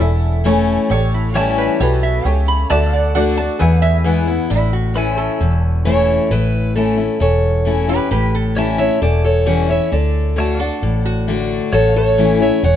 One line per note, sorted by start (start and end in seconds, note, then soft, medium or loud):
0.00 0.77 E1 medium
0.00 0.86 E2 medium
0.00 0.40 E4 medium
0.00 0.41 A4 medium
0.00 0.41 C#5 medium
0.00 0.41 E5 medium
0.00 0.88 A5 medium
0.44 0.88 E3 medium
0.44 0.88 A3 medium
0.44 0.88 C#4 medium
0.44 0.86 E4 medium
0.44 0.89 E4 medium
0.44 0.86 A4 medium
0.44 0.86 C#5 medium
0.90 1.67 A1 medium
0.90 1.76 A2 medium
0.90 1.31 G4 medium
0.90 1.31 A4 medium
0.90 1.12 C#5 medium
0.90 1.32 C#5 medium
1.14 1.36 E4 medium
1.34 1.78 E3 medium
1.34 1.78 G3 medium
1.34 1.78 C#4 medium
1.34 1.79 E4 medium
1.34 1.76 G4 medium
1.34 1.58 G4 medium
1.34 1.76 A4 medium
1.34 2.69 C#5 medium
1.34 1.76 C#5 medium
1.34 2.69 E5 medium
1.34 2.70 A5 medium
1.58 1.80 B4 medium
1.80 2.19 B1 medium
1.80 2.23 B2 loud
1.80 2.21 G4 medium
1.80 2.21 A4 medium
1.80 2.22 B4 medium
1.80 2.02 C#5 medium
2.03 2.26 E5 medium
2.24 2.63 C#2 medium
2.24 2.68 C#3 medium
2.24 2.66 G4 medium
2.24 2.66 A4 medium
2.24 2.66 C#5 medium
2.24 2.48 G5 medium
2.48 2.69 B5 loud
2.70 3.47 D2 medium
2.70 3.14 D3 medium
2.70 3.11 F#4 medium
2.70 3.11 A4 medium
2.70 3.60 D5 medium
2.70 3.11 D5 medium
2.70 2.96 E5 medium
2.70 2.92 A5 loud
2.70 3.61 A5 medium
2.93 3.15 D5 medium
2.93 3.60 F#5 medium
3.15 3.37 D3 medium
3.15 3.37 A3 medium
3.15 3.37 D4 medium
3.15 3.56 F#4 medium
3.15 3.36 F#4 medium
3.15 3.56 A4 medium
3.15 3.56 D5 medium
3.15 3.37 F#5 loud
3.37 3.60 D4 medium
3.37 3.59 F#4 medium
3.37 3.59 A5 loud
3.59 4.46 E2 medium
3.59 4.38 E2 medium
3.59 4.00 G#4 medium
3.59 4.01 B4 medium
3.59 4.50 B4 medium
3.59 4.01 E5 medium
3.59 3.87 F#5 medium
3.59 3.82 G#5 medium
3.59 4.51 G#5 medium
3.82 3.96 E5 loud
3.87 4.50 E5 medium
4.04 4.27 E3 medium
4.04 4.27 G#3 medium
4.04 4.28 B3 medium
4.04 4.27 E4 medium
4.04 4.46 G#4 medium
4.04 4.46 B4 medium
4.04 4.46 F#5 medium
4.28 4.51 B3 medium
4.28 4.50 E4 medium
4.50 5.28 A1 medium
4.50 5.36 A2 medium
4.50 4.72 E4 medium
4.73 4.95 F#4 medium
4.95 5.38 E3 medium
4.95 5.38 A3 medium
4.95 5.39 C#4 medium
4.95 5.39 E4 medium
4.95 5.16 A4 medium
4.95 5.21 B4 medium
4.95 8.09 E5 medium
4.95 5.18 G#5 medium
5.17 5.62 A4 medium
5.17 8.08 C#5 medium
5.17 8.09 A5 medium
5.41 6.18 E1 medium
5.41 6.26 E2 medium
5.85 6.28 E3 medium
5.85 6.29 A3 medium
5.85 6.29 C#4 medium
5.85 6.29 E4 medium
5.85 6.28 A4 medium
5.85 6.28 C#5 medium
6.30 7.08 A1 medium
6.30 7.17 A2 medium
6.30 6.73 E4 medium
6.30 6.75 B4 loud
6.75 6.98 E3 medium
6.75 6.98 A3 medium
6.75 6.98 C#4 medium
6.75 7.18 E4 medium
6.75 6.96 E4 medium
6.75 7.18 A4 medium
6.98 7.21 C#4 soft
6.98 7.20 E4 medium
7.20 7.98 E1 medium
7.20 8.06 E2 medium
7.20 7.85 A4 medium
7.20 7.85 C#5 medium
7.65 7.87 E3 medium
7.65 7.88 A3 medium
7.65 7.88 C#4 medium
7.65 7.86 E4 medium
7.88 8.11 C#4 soft
7.88 8.10 E4 medium
7.88 8.10 G4 medium
7.88 8.10 B4 medium
8.11 8.88 A1 medium
8.11 8.97 A2 medium
8.11 8.32 G4 medium
8.11 8.33 B4 medium
8.35 8.67 A4 loud
8.56 8.78 E3 medium
8.56 8.78 G3 medium
8.56 8.79 C#4 medium
8.56 8.78 E4 medium
8.56 9.91 C#5 medium
8.56 9.91 E5 medium
8.56 9.92 A5 medium
8.78 9.02 C#4 medium
8.78 9.01 E4 medium
8.78 9.00 C#5 medium
8.78 9.02 E5 medium
9.02 9.79 E1 medium
9.02 9.88 E2 medium
9.02 9.23 A4 medium
9.02 9.23 D5 medium
9.24 9.45 A4 medium
9.24 9.45 C#5 medium
9.46 9.68 E3 medium
9.46 9.68 G3 medium
9.46 9.69 C#4 medium
9.46 9.68 E4 medium
9.46 9.68 C#5 medium
9.46 9.70 F#5 medium
9.69 9.92 C#4 soft
9.69 9.91 E4 medium
9.69 9.91 C#5 medium
9.69 9.92 E5 medium
9.92 10.69 D2 medium
9.92 10.35 D3 medium
9.92 10.56 A4 medium
9.92 10.56 D5 medium
10.36 10.58 D3 medium
10.36 10.59 A3 medium
10.36 10.59 D4 medium
10.36 10.58 F#4 medium
10.36 10.58 C#5 medium
10.36 10.64 E5 medium
10.40 11.73 A5 medium
10.58 10.82 D4 medium
10.58 10.81 F#4 medium
10.58 11.03 A4 medium
10.58 11.72 D5 medium
10.64 11.72 F#5 medium
10.83 11.60 A1 medium
10.83 11.68 A2 medium
11.05 11.49 F#4 medium
11.28 11.70 D3 medium
11.28 11.71 A3 medium
11.28 11.71 D4 medium
11.28 11.71 F#4 medium
11.73 12.50 A1 medium
11.73 12.59 A2 medium
11.73 11.94 A4 medium
11.73 12.76 C#5 medium
11.73 11.95 C#5 medium
11.73 11.98 F#5 medium
11.73 12.76 A5 medium
11.96 12.38 A4 medium
11.96 12.41 C#5 medium
11.96 12.76 E5 medium
12.18 12.40 E3 medium
12.18 12.40 A3 medium
12.18 12.40 C#4 medium
12.18 12.39 E4 medium
12.40 12.63 C#4 soft
12.40 12.62 E4 medium
12.40 12.62 C#5 medium
12.40 12.64 E5 loud
12.63 12.76 E1 medium
12.63 12.76 E2 medium
12.63 12.76 C#5 medium
12.63 12.76 F#5 loud